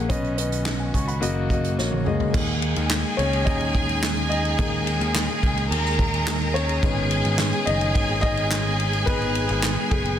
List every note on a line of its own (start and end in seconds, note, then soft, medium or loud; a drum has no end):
0.00 0.12 A#3 medium
0.00 2.30 C#4 medium
0.00 0.12 G#4 medium
0.00 0.12 F#5 medium
0.00 0.11 G#5 loud
0.09 0.90 B1 medium
0.09 2.32 D#3 medium
0.09 1.21 B3 medium
0.09 0.35 C#4 medium
0.09 2.32 F#4 medium
0.09 0.35 B4 medium
0.09 0.36 D#5 loud
0.09 kick loud
0.09 closed hi-hat medium
0.24 closed hi-hat soft
0.37 0.63 C#4 medium
0.37 0.63 B4 medium
0.37 0.64 D#5 medium
0.37 closed hi-hat medium
0.52 closed hi-hat soft
0.66 snare medium
0.66 clap medium
0.80 0.93 D#5 soft
0.80 0.93 G#5 medium
0.94 1.20 C#2 medium
0.94 1.08 G#5 medium
0.94 1.07 C#6 medium
0.94 kick medium
0.94 closed hi-hat medium
1.08 1.35 F#5 soft
1.08 1.34 B5 medium
1.08 closed hi-hat soft
1.21 1.49 F#1 medium
1.21 2.02 C#3 medium
1.21 1.47 A#3 medium
1.21 2.33 A#3 medium
1.21 1.47 F#4 medium
1.21 1.48 D#5 medium
1.21 closed hi-hat medium
1.49 1.76 F#1 medium
1.49 1.75 A#3 medium
1.49 1.75 F#4 medium
1.49 1.76 D#5 medium
1.49 kick medium
1.49 closed hi-hat soft
1.64 closed hi-hat soft
1.77 2.05 A#1 medium
1.77 2.03 A#3 medium
1.77 2.04 F#4 medium
1.77 2.04 C#5 medium
1.77 snare soft
1.92 high tom soft
2.05 2.33 C#2 medium
2.05 2.32 G#3 medium
2.05 2.31 A#3 medium
2.05 2.32 F#4 medium
2.05 3.21 G#4 medium
2.05 2.32 D#5 medium
2.05 mid tom medium
2.20 floor tom medium
2.33 2.73 D#2 loud
2.33 10.19 D#3 medium
2.33 4.54 G#3 medium
2.33 6.79 G#3 medium
2.33 4.55 A#3 medium
2.33 6.79 A#3 medium
2.33 3.45 D#4 medium
2.33 5.67 G#4 medium
2.33 10.19 G#4 medium
2.33 5.67 G#5 medium
2.33 kick loud
2.33 crash medium
2.62 ride medium
2.76 3.03 D#2 medium
2.76 ride soft
2.90 snare loud
2.90 clap medium
2.90 ride medium
3.17 3.45 C#2 medium
3.17 3.45 C#4 medium
3.17 3.47 C#5 medium
3.17 ride medium
3.33 ride soft
3.45 4.55 D#2 medium
3.45 4.27 D#4 medium
3.45 4.26 D#5 loud
3.45 kick medium
3.45 ride medium
3.60 ride soft
3.75 kick medium
3.75 ride soft
3.89 ride soft
4.03 snare loud
4.03 clap loud
4.03 ride medium
4.17 ride soft
4.29 4.58 D#4 medium
4.29 6.61 D#5 loud
4.29 ride medium
4.45 ride soft
4.58 4.98 D#2 medium
4.58 6.79 G#3 medium
4.58 6.79 A#3 medium
4.58 6.79 D#4 medium
4.58 kick loud
4.58 ride medium
4.87 ride medium
5.01 5.27 D#2 medium
5.01 ride soft
5.15 snare loud
5.15 clap medium
5.15 ride medium
5.43 5.69 C#2 medium
5.43 kick medium
5.43 ride medium
5.57 ride soft
5.71 6.79 D#2 loud
5.71 6.81 A#4 medium
5.71 6.81 A#5 medium
5.71 ride medium
5.86 snare soft
5.99 kick medium
5.99 ride soft
6.14 ride soft
6.27 snare loud
6.27 clap loud
6.27 ride medium
6.41 ride soft
6.54 7.35 C#4 medium
6.54 7.35 C#5 loud
6.54 ride medium
6.69 ride soft
6.82 7.22 G#1 loud
6.82 7.63 G#3 medium
6.82 10.19 G#3 medium
6.82 7.63 B3 medium
6.82 10.19 B3 medium
6.82 7.64 D#4 medium
6.82 10.19 G#4 medium
6.82 10.19 G#5 loud
6.82 kick loud
6.82 ride medium
7.11 ride medium
7.25 7.51 G#1 medium
7.25 ride soft
7.39 snare loud
7.39 clap medium
7.39 ride medium
7.53 ride soft
7.65 7.93 F#1 medium
7.65 8.20 D#4 medium
7.65 8.20 D#5 loud
7.65 ride medium
7.81 ride soft
7.95 9.03 G#1 loud
7.95 kick medium
7.95 ride medium
8.21 9.03 D#4 medium
8.21 9.02 D#5 loud
8.21 kick medium
8.21 ride soft
8.37 ride soft
8.51 snare loud
8.51 clap loud
8.51 ride medium
8.80 ride medium
8.93 ride soft
9.06 9.46 G#1 loud
9.06 9.44 G#3 medium
9.06 9.88 B3 medium
9.06 9.45 D#4 medium
9.06 9.93 B4 loud
9.06 kick loud
9.06 ride medium
9.22 ride soft
9.35 ride medium
9.49 9.76 G#1 loud
9.49 ride soft
9.63 snare loud
9.63 clap medium
9.63 ride medium
9.91 10.17 F#1 medium
9.91 10.19 G#3 medium
9.91 10.19 G#4 medium
9.91 kick medium
9.91 ride medium
10.05 ride soft